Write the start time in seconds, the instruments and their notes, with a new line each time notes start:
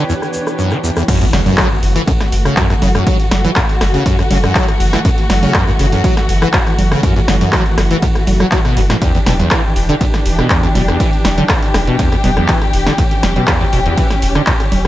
Already playing: string section E3 D4 G4, ambient pad B3 E4 B4 C#5
0.09 acid bass E2, shaker
0.22 cross-stick, shaker
0.33 shaker
0.47 cross-stick, shaker
0.59 acid bass F#2, shaker
0.71 acid bass E3, cross-stick, shaker
0.83 acid bass E2, shaker
0.96 acid bass E2, cross-stick, shaker
1.08 acid bass F#2, string section E3 A3 F#4, kick, closed hi-hat, crash, ride, impact
1.21 acid bass F#2, closed hi-hat
1.33 sub bass F#1, acid bass C#3, cross-stick, snare, open hi-hat, low conga
1.46 acid bass F#2, closed hi-hat, low conga
1.58 acid bass F#3, kick, cross-stick, clap, closed hi-hat, ride
1.83 sub bass F#1, open hi-hat
1.96 acid bass E3, closed hi-hat
2.07 acid bass F#2, kick, closed hi-hat, ride
2.21 cross-stick, snare, closed hi-hat
2.32 sub bass F#1, open hi-hat
2.45 acid bass C#3, cross-stick, closed hi-hat
2.57 acid bass F#2, kick, clap, closed hi-hat, ride
2.70 acid bass F#2, cross-stick, closed hi-hat
2.82 sub bass F#1, acid bass C#3, open hi-hat, low conga
2.95 acid bass F#2, cross-stick, closed hi-hat
3.07 acid bass F#3, kick, closed hi-hat, ride
3.20 closed hi-hat
3.31 sub bass F#1, cross-stick, snare, open hi-hat, low conga
3.44 acid bass E3, closed hi-hat, low conga
3.56 acid bass F#2, kick, cross-stick, clap, closed hi-hat, ride
3.69 closed hi-hat
3.81 sub bass F#1, cross-stick, snare, open hi-hat
3.94 acid bass C#3, closed hi-hat
4.06 acid bass F#2, kick, closed hi-hat, ride
4.19 acid bass F#2, cross-stick, closed hi-hat
4.31 sub bass F#1, acid bass C#3, open hi-hat, low conga
4.44 acid bass F#2, cross-stick, closed hi-hat, low conga
4.55 acid bass F#3, kick, clap, closed hi-hat, ride
4.68 cross-stick, closed hi-hat
4.80 sub bass F#1, open hi-hat
4.93 acid bass E3, cross-stick, snare, closed hi-hat
5.05 acid bass F#2, kick, closed hi-hat, ride
5.18 closed hi-hat
5.30 sub bass F#1, cross-stick, snare, open hi-hat, low conga
5.43 acid bass C#3, closed hi-hat, low conga
5.54 acid bass F#2, kick, cross-stick, clap, closed hi-hat, ride
5.68 acid bass F#2
5.79 sub bass F#1, acid bass C#3, open hi-hat
5.92 acid bass F#2, closed hi-hat
6.04 acid bass F#3, kick, closed hi-hat, ride
6.17 cross-stick, snare, closed hi-hat
6.29 sub bass F#1, open hi-hat
6.42 acid bass E3, cross-stick, closed hi-hat
6.53 acid bass F#2, kick, clap, closed hi-hat, ride
6.67 cross-stick, closed hi-hat
6.78 sub bass F#1, open hi-hat, low conga
6.91 acid bass C#3, cross-stick, closed hi-hat
7.03 acid bass F#2, kick, closed hi-hat, ride
7.16 acid bass F#2, closed hi-hat
7.28 sub bass F#1, acid bass C#3, cross-stick, snare, open hi-hat, low conga
7.41 acid bass F#2, closed hi-hat, low conga
7.52 acid bass F#3, kick, cross-stick, clap, closed hi-hat, ride
7.66 closed hi-hat
7.78 sub bass F#1, cross-stick, snare, open hi-hat
7.91 acid bass E3, closed hi-hat
8.02 acid bass F#2, kick, closed hi-hat, ride
8.15 cross-stick, closed hi-hat
8.27 sub bass F#1, open hi-hat, low conga
8.40 acid bass F#3, cross-stick, closed hi-hat, low conga
8.51 acid bass F#3, kick, clap, closed hi-hat, ride
8.65 acid bass B2, cross-stick, closed hi-hat
8.77 sub bass F#1, acid bass E2, open hi-hat
8.90 acid bass A2, cross-stick, snare, closed hi-hat
9.02 acid bass E2, string section D4 G4, kick, closed hi-hat, ride
9.15 acid bass E2, closed hi-hat
9.26 sub bass E1, acid bass B2, cross-stick, snare, open hi-hat, low conga
9.39 acid bass E2, closed hi-hat, low conga
9.51 acid bass E3, kick, cross-stick, clap, closed hi-hat, ride
9.76 sub bass E1, open hi-hat
9.89 acid bass D3, closed hi-hat
10.01 acid bass E2, kick, closed hi-hat, ride
10.14 cross-stick, snare, closed hi-hat
10.26 sub bass E1, open hi-hat
10.39 acid bass B2, cross-stick, closed hi-hat
10.50 acid bass E2, kick, clap, closed hi-hat, ride
10.63 acid bass E2, cross-stick, closed hi-hat
10.75 sub bass E1, acid bass B2, open hi-hat, low conga
10.88 acid bass E2, cross-stick, closed hi-hat
11.00 acid bass E3, kick, closed hi-hat, ride
11.13 closed hi-hat
11.25 sub bass E1, cross-stick, snare, open hi-hat, low conga
11.38 acid bass D3, closed hi-hat, low conga
11.49 acid bass E2, kick, cross-stick, clap, closed hi-hat, ride
11.63 closed hi-hat
11.74 sub bass E1, cross-stick, snare, open hi-hat
11.87 acid bass B2, closed hi-hat
11.99 acid bass E2, kick, closed hi-hat, ride
12.12 acid bass E2, cross-stick, closed hi-hat
12.24 sub bass E1, acid bass B2, open hi-hat, low conga
12.37 acid bass E2, cross-stick, closed hi-hat, low conga
12.48 acid bass E3, kick, clap, closed hi-hat, ride
12.62 cross-stick, closed hi-hat
12.73 sub bass E1, open hi-hat
12.86 acid bass D3, cross-stick, snare, closed hi-hat
12.98 acid bass E2, string section C#4, kick, closed hi-hat, ride
13.11 closed hi-hat
13.23 sub bass E1, cross-stick, snare, open hi-hat, low conga
13.36 acid bass B2, closed hi-hat, low conga
13.47 acid bass E2, kick, cross-stick, clap, closed hi-hat, ride
13.61 acid bass E2
13.73 sub bass E1, acid bass B2, open hi-hat
13.86 acid bass E2, closed hi-hat
13.98 acid bass E3, kick, closed hi-hat, ride
14.10 cross-stick, snare, closed hi-hat
14.22 sub bass E1, open hi-hat
14.35 acid bass D3, cross-stick, closed hi-hat
14.47 acid bass E2, kick, clap, closed hi-hat, ride
14.60 cross-stick, closed hi-hat
14.72 sub bass E1, open hi-hat, low conga